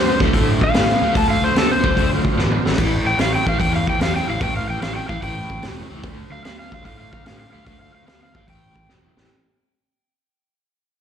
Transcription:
Already playing: D2 D3 F#3 B3 D4 F4 C5
0.20 D2 D3 A3, kick, snare
0.33 A2 D3 A3, kick, open hi-hat
0.61 F5, kick
0.74 A2 D3 B3, snare, open hi-hat
0.89 snare
1.02 D2 D3 A3
1.15 D2 D3 A3 A5, kick, open hi-hat
1.30 F5
1.42 D2 C5
1.54 D2 D3 B3 A4, snare, open hi-hat
1.71 C5
1.84 D2 D3 A3, kick
1.97 D2 D3 A3, kick, open hi-hat
2.24 D2, kick
2.37 A1 D3 B3, snare
2.52 mid tom
2.65 G#1 D3 A3, snare
2.73 snare
2.77 A1 A2 E3 A#3 D4 G#4 C#5, kick, open hi-hat, crash
2.92 A3 C#4 G4 C5
3.05 A1 G5
3.18 A1 A2 F#3 F5, snare, open hi-hat
3.35 G5
3.46 A1 A2 E3 F5, kick
3.60 E2 A2 E3 G5, kick, open hi-hat
3.76 F5
3.87 G5, kick
4.00 E2 A2 F#3 F5, snare, open hi-hat
4.16 G5
4.28 A1 A2 E3 F5
4.40 A1 A2 E3 G5, kick, open hi-hat
4.57 F5
4.69 A1 G5
4.81 A1 A2 F#3 F5, snare, open hi-hat
4.96 G5
5.09 A1 A2 E3 F5, kick
5.22 A1 A2 E3 G5, kick, open hi-hat
5.50 A1, kick
5.63 E1 A2 F#3, snare, open hi-hat
5.90 C#2 A2 E3
6.03 D2 D3 F#3 A3 D4 F4 C5, kick, open hi-hat
6.31 D2 F5
6.44 D2 D3 B3 F5, snare, open hi-hat
6.59 F5
6.72 D2 D3 A3 F5, kick
6.85 A2 D3 A3 F5, kick, open hi-hat
7.00 F5
7.13 F5, kick
7.25 A2 D3 B3 F5, snare, open hi-hat
7.40 F5
7.53 D2 D3 A3 F5
7.66 D2 D3 A3 F5, kick, open hi-hat
7.81 F5
7.95 D2 F5
8.07 D2 D3 B3 F5, snare, open hi-hat
8.23 F5
8.35 G#1 D3 A3 F5, kick
8.47 A1 A2 E3 A3 C#4 G4 C5 G5, kick, open hi-hat
8.76 A1, kick
8.89 E1 A2 F#3, snare
9.17 A1 A2 E3, snare
9.24 snare

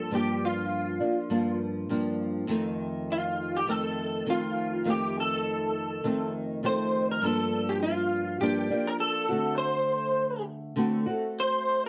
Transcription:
Already playing: F3 A#3 D4 A4
0.11 G2 F3 A#3 D4 G4
0.45 F4
1.00 F3 A#3 D4
1.30 G2 F3 A#3 D4
1.89 G2 F3 A#3 D4
2.47 F2 D#3 A3 C4
3.12 F4
3.57 G4
3.67 F2 D#3 A3 C4 A4
4.26 F2 D#3 A3 C4
4.30 F4
4.84 F2 D#3 A3 C4
4.90 G4
5.20 A4
6.03 F2 D#3 A3 C4
6.63 F2 D#3 A3 C4 C5
7.11 A#4
7.22 G2 F3 A#3 D4 A4
7.69 G4
7.83 F4
8.40 G2 F3 A#3 D4 G4
8.70 F3 A#3 D4
8.87 A#4
9.00 A4
9.29 D3 A3 C4 F#4
9.58 C5
10.76 D3 A3 C4 F#4
11.06 A3 C4 F#4
11.40 C5

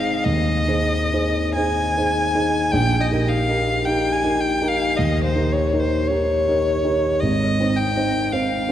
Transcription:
Already playing: D#4 G#4 C5 F5
0.24 D#2 D#5
0.67 D#4 G#4 C5
1.13 D#4 G#4 C5
1.55 D#4 G#4 C5 G#5
1.97 D#4 G#4 C5
2.35 D#4 G#4 C5
2.72 A#1 G5
3.01 D#5
3.11 D#4 G4 A#4
3.28 F5
3.49 D#4 G4 A#4
3.85 D#4 G4 A#4 G5
4.12 G#5
4.24 D#4 G4 A#4
4.41 G5
4.61 D#4 G4 A#4
4.68 F5
4.97 D#2 D#5
5.24 C5
5.35 D#4 G4 A#4
5.52 C#5
5.73 D#4 G4 A#4
5.80 C5
6.08 D#4 G4 A#4 C#5
6.48 D#4 G4 A#4
6.84 D#4 G4 A#4
7.20 G#1 D#5
7.60 C4 D#4 C5
7.77 G5
7.96 C4 D#4 C5
8.32 C4 D#4 C5 F5
8.69 C4

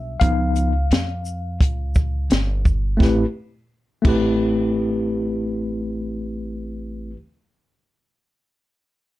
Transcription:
Already playing: B1 F#3 G3 D4 E5
0.20 C#2 F3 B3 D#4 F5, kick, closed hi-hat
0.56 closed hi-hat, shaker
0.91 F2, snare, closed hi-hat
1.25 shaker
1.61 C#2, kick, closed hi-hat
1.95 kick, shaker
2.30 G1, snare, closed hi-hat
2.65 kick, shaker
2.97 A1 A3 C4 E4, kick
3.02 G4 B4, snare
4.02 A1 A3 C4 E4, kick, crash
4.07 G4 B4

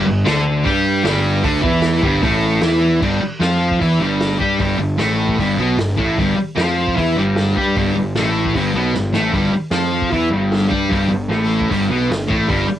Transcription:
0.06 G1 G2
0.25 D2 D3 D4, snare, open hi-hat
0.64 G2 G3 G4, kick, open hi-hat
1.04 G1 G2 G3, snare, open hi-hat
1.43 D2 D3 D4, kick, open hi-hat
1.62 E2 E3 E4, kick
1.82 snare, open hi-hat
2.02 G1 G2 G3, kick
2.22 A1 A2 A3, kick, open hi-hat
2.62 E2 E3 E4, snare, open hi-hat
3.01 G1 G2 G3, kick, crash
3.21 muted distorted electric guitar stroke, muted picked electric bass stroke
3.40 F2 F3 F4, snare, open hi-hat
3.71 kick
3.81 E2 E3 E4, kick, open hi-hat
4.00 G1 G2 G3
4.21 snare, open hi-hat
4.39 G2 G3 G4, kick
4.59 G1 G2 G3, kick, open hi-hat
4.78 G1 G2
4.98 A1 A2 A3, snare, open hi-hat
5.29 kick
5.38 G1 G2 G3, kick, open hi-hat
5.57 B1 B2 B3
5.77 G1 G2, snare, open hi-hat
5.97 A1 A2 A3, kick
6.16 G1 G2 G3, kick, open hi-hat
6.36 muted distorted electric guitar stroke, muted picked electric bass stroke
6.56 F2 F3 F4, snare, open hi-hat
6.88 kick
6.96 E2 E3 E4, kick, open hi-hat
7.17 G1 G2 G3
7.36 snare, open hi-hat
7.56 G2 G3 G4, kick
7.76 G1 G2 G3, kick, open hi-hat
7.95 G1 G2
8.15 A1 A2 A3, snare, open hi-hat
8.45 kick
8.54 G1 G2 G3, kick, open hi-hat
8.74 B1 B2 B3
8.94 G1 G2, snare
9.13 A1 A2 A3, snare
9.32 G1 G2 G3, kick, open hi-hat
9.52 muted picked electric bass stroke, muted distorted electric guitar stroke
9.71 F2 F3 F4, snare, open hi-hat
10.02 kick
10.11 E2 E3 E4, kick, open hi-hat
10.30 G1 G2 G3
10.52 snare, open hi-hat
10.69 G2 G3 G4, kick
10.90 G1 G2 G3, kick, open hi-hat
11.09 G1 G2
11.29 A1 A2 A3, snare, open hi-hat
11.61 kick
11.69 G1 G2 G3, kick, open hi-hat
11.89 B1 B2 B3
12.08 G1 G2, snare, open hi-hat
12.28 A1 A2 A3, kick
12.47 G1 G2 G3, kick, open hi-hat
12.69 muted distorted electric guitar stroke, muted picked electric bass stroke

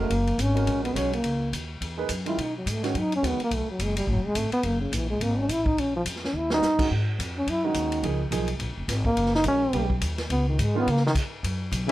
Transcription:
0.01 A#3
0.10 F#1, kick, ride
0.27 ride
0.38 G#1, kick, hi-hat pedal, ride
0.42 C#4
0.55 G#3 C#4 F#4 A#4, ride
0.66 A#1, kick, ride
0.85 B3, ride
0.95 B1 G#3 C#4 F#4 C#5, kick, hi-hat pedal, ride
1.13 A#3, ride
1.23 C#2, kick, ride
1.52 D#2, kick, hi-hat pedal, ride
1.81 E2, kick, ride
1.97 A#3 D#4 G#4 B4
2.09 F#2, kick, hi-hat pedal, ride
2.25 D#3 G#3 C#4 E4 F4, ride
2.38 B2 D#4, kick, ride
2.58 F#3
2.66 G#2, kick, hi-hat pedal, ride
2.71 A3
2.83 D#3 G#3 C#4 F#4, snare, ride
2.94 F#2, kick, ride
2.99 D#4
3.12 C#4, ride
3.22 D#2 D#3 G#3 C#4 F#4, kick, hi-hat pedal, ride
3.28 B3
3.39 muted upright bass stroke, ride
3.44 A#3
3.51 B1, kick, ride
3.55 A3
3.68 F#3, muted upright bass stroke
3.79 F#1 G#3, kick, hi-hat pedal, ride
3.97 G3, ride
4.07 A1 F#3, kick
4.14 F#1
4.26 D1 G#3
4.35 G#1 A3, kick, hi-hat pedal, ride
4.50 B3, muted upright bass stroke, ride
4.63 F#1 A#3, kick, ride
4.81 C#3
4.92 A#1 E3, kick, hi-hat pedal, ride
5.10 G#3
5.21 G#1 A#3, kick, ride
5.39 C#4
5.49 A1 E4, kick, hi-hat pedal, ride
5.66 D#4, kick
5.77 A#1 C#4, kick, ride
5.96 F3
6.05 F2, kick, hi-hat pedal, ride
6.16 snare
6.24 C#4, snare
6.33 D#2
6.37 E4
6.50 G3 B3 C#4 D#4 F#4, snare
6.61 G2, snare, hi-hat pedal
6.78 D#3 G#3 C#4 F#4, kick, crash
6.91 G#2, kick
7.19 F2, kick, hi-hat pedal, ride
7.38 C#4
7.47 F#2 E4, kick, ride
7.64 D#3 G#3 C#4 D#4 F#4
7.74 D#2, kick, hi-hat pedal, ride
7.92 ride
8.03 C#2 F3 A#3 D#4 G#4, kick, ride
8.31 B1 F3 A#3 D#4 G#4, kick, hi-hat pedal, ride
8.48 ride
8.59 A#1, kick, ride
8.69 G#1
8.77 F1
8.88 G#1, kick, snare, hi-hat pedal, ride
9.05 A#3, kick
9.16 F#1, kick, ride
9.26 snare
9.35 D#4, snare
9.44 A#1 G#3 C#4 F#4 A#4, kick, hi-hat pedal, ride
9.48 C#4
9.72 B1 G3 B3 C#4 G4, kick, ride
9.90 kick
10.01 D#2, kick, hi-hat pedal, ride
10.18 snare, ride
10.30 C#2 B3, kick, ride
10.49 D#3
10.58 G#2 G#3, kick, hi-hat pedal, ride
10.75 D#3 G#3 B3 C#4 F4
10.87 C#3 A#3, kick, ride
10.97 snare
11.06 D#3, snare
11.15 kick, hi-hat pedal, crash, ride
11.43 F#2, kick, ride
11.71 B1, kick, hi-hat pedal, ride
11.88 C#3 E3

